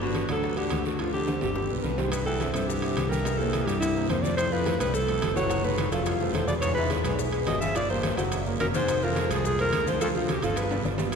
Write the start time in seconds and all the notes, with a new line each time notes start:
Already playing: G1
0.01 D3 B3 F#4 B4, high bongo, high conga
0.15 high bongo, high conga, high timbale, short guiro
0.29 D2 F#3 D4 A4 D5, high bongo, high conga, high timbale, short guiro
0.44 high bongo, high conga, long guiro
0.57 D3 F#4 G4 F#5, high conga, high timbale
0.70 D2, high bongo, low bongo, high conga, high timbale, low timbale, short guiro
0.85 D3 A3 F#4 A4, high bongo, high conga, short guiro
0.99 D3 F3 F4, high bongo, high conga, high timbale, long guiro
1.14 D3 G4, high bongo, high conga
1.27 C4 C5, high bongo, high conga, high timbale, short guiro
1.41 G1 D3 G4, low bongo, high conga, low timbale, short guiro
1.56 G3 G4, low bongo, high conga, long guiro
1.70 B1 B3 B4, high conga
1.82 C2 G2 A#4 B4, low bongo, high conga, short guiro
1.98 G#2 G3 G4 C5, low bongo, high conga, low timbale, short guiro
2.11 G2 B4, high bongo, high conga, high timbale, long guiro, maracas
2.26 E2 G3 G4 A4 G5, high bongo, high conga, maracas
2.41 C4 C5 E5, high bongo, high conga, high timbale, short guiro, maracas
2.53 F2 G2 C4 A4 C5 E5, high bongo, high conga, low conga, high timbale, short guiro, maracas
2.67 E2 G4, high bongo, high conga, long guiro, maracas
2.82 C4 C5 E5, high conga, high timbale, maracas
2.97 C2, high bongo, low bongo, high conga, high timbale, short guiro, maracas
3.10 G2 G3 G4 A#4 G5, high bongo, high conga, short guiro, maracas
3.25 G3 G4 G5, high bongo, high timbale, long guiro, maracas
3.38 E2 A#3 A4 A#4 C5, high bongo, high conga, maracas
3.53 high bongo, high conga, high timbale, short guiro, maracas
3.65 E2 G2 G3 G4 G5, high bongo, high conga, high timbale, short guiro, maracas
3.80 C2 E4, high bongo, high conga, high timbale, long guiro, maracas
3.95 A#3 A#4 C5, high conga, maracas
4.09 F2 G2 A#3 A#4 C5, high bongo, low bongo, high conga, high timbale, short guiro, maracas
4.22 A#2 A3 A4 C5 D5, high bongo, high conga, short guiro, maracas
4.37 A2 C5, high bongo, high conga, high timbale, long guiro, maracas
4.50 F2 F3 F4 B4 F5, high bongo, high conga, maracas
4.66 A3 A4 C5, high bongo, high conga, high timbale, short guiro, maracas
4.78 C2 G2 A3 A4 B4 C5, high bongo, high conga, low conga, high timbale, short guiro, maracas
4.92 F2 A4, high bongo, high conga, low conga, long guiro, maracas
5.07 A3 A4 C5, high conga, high timbale, maracas
5.21 F#1, high bongo, low bongo, high conga, high timbale, low timbale, short guiro, maracas
5.34 A2 F#3 F#4 C#5 F#5, high bongo, high conga, short guiro, maracas
5.49 F#3 F#4 F#5, high bongo, high conga, high timbale, long guiro, maracas
5.64 G#2 A3 A4 B4 C#5, high bongo, high conga, maracas
5.78 high bongo, high conga, high timbale, short guiro, maracas
5.92 F1 F#2 F3 F4 A4 F5, high bongo, high conga, high timbale, short guiro, maracas
6.04 C2 F4, high bongo, high conga, high timbale, long guiro, maracas
6.20 A3 A4 C5, high conga, maracas
6.32 E1 A2 A3 A4 C5, high bongo, low bongo, high conga, high timbale, short guiro, maracas
6.36 C5
6.47 B2 G#3 G#4 B4 D5, high bongo, high conga, short guiro, maracas
6.61 G#2 C#5, high bongo, high conga, high timbale, long guiro, maracas
6.75 G#2 E3 E4 B4 E5, high bongo, high conga, maracas
6.90 G#3 G#4 B4, high bongo, high conga, high timbale, short guiro, maracas
7.03 B1 G#2 G#3 G#4 B4, high bongo, high conga, low conga, high timbale, short guiro, maracas
7.19 high bongo, high conga, long guiro, maracas
7.33 G#3 G#4 B4, high conga, high timbale, maracas
7.46 G1 B2 D#5, high bongo, low bongo, high conga, high timbale, low timbale, short guiro, maracas
7.61 C#3 F3 F4 E5 F5, high bongo, high conga, short guiro, maracas
7.75 A#2 F3 F4 D5 F5, high bongo, high conga, high timbale, long guiro, maracas
7.90 G2 A#3 A#4 C5 D5, high bongo, high conga, maracas
8.03 high bongo, high conga, high timbale, short guiro, maracas
8.17 F#1 A2 F#3 F#4 C5 F#5, high bongo, high conga, high timbale, short guiro, maracas
8.32 high bongo, high conga, high timbale, long guiro, maracas
8.46 A#3 A#4 C#5, high conga, maracas
8.60 F1 F#2 A#3 A#4 C#5, high bongo, low bongo, high conga, high timbale, short guiro, maracas
8.74 G#2 G#3 G#4 C5, high bongo, high conga, short guiro, maracas
8.88 high bongo, high conga, high timbale, long guiro, maracas
9.02 F2 F3 F4 A#4 F5, high bongo, high conga, maracas
9.15 G#3 G#4 C5, high bongo, high conga, high timbale, short guiro, maracas
9.30 C2 F2 G#3 G#4 C5, high bongo, high conga, low conga, high timbale, short guiro, maracas
9.44 F2 G#4, high bongo, high conga, low conga, long guiro, maracas
9.59 F2 G#3 G#4 A#4 C5, high conga, high timbale, maracas
9.73 D2, high bongo, low bongo, high conga, high timbale, short guiro, maracas
9.87 G#2 F3 F4 C5 F5, high bongo, high conga, short guiro, maracas
10.01 F2 F3 F4 A4 F5, high bongo, high conga, high timbale, long guiro, maracas
10.15 D2 A3 F4 A4 C5, high bongo, high conga, maracas
10.28 D2 G4, high bongo, high conga, high timbale, short guiro, maracas
10.42 G1 F2 F3 F4 A4 F5, high bongo, high conga, high timbale, short guiro, maracas
10.56 B4, high bongo, high conga, high timbale, long guiro, maracas
10.60 G2
10.70 B3 B4 D5, high conga, high timbale, maracas
10.84 G1 B3 B4 D5, high bongo, low bongo, high conga, short guiro, maracas
10.98 B3 B4 D5, high bongo, high conga, low timbale, short guiro, maracas
11.12 high conga, high timbale